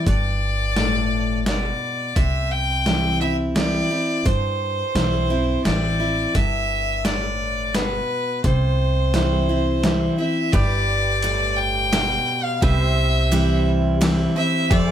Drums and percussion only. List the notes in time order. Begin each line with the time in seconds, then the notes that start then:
0.06 kick, closed hi-hat
0.76 snare, closed hi-hat
1.46 snare, closed hi-hat
2.16 kick, closed hi-hat
2.86 snare, closed hi-hat
3.56 snare, closed hi-hat
4.26 kick, closed hi-hat
4.96 snare, closed hi-hat
5.65 snare, closed hi-hat
6.35 kick, closed hi-hat
7.05 snare, closed hi-hat
7.75 snare, closed hi-hat
8.44 kick, closed hi-hat
9.14 snare, closed hi-hat
9.84 snare, closed hi-hat
10.53 kick, ride
11.22 ride
11.93 snare, ride
12.62 kick, ride
13.32 ride
14.01 snare, ride
14.71 kick, ride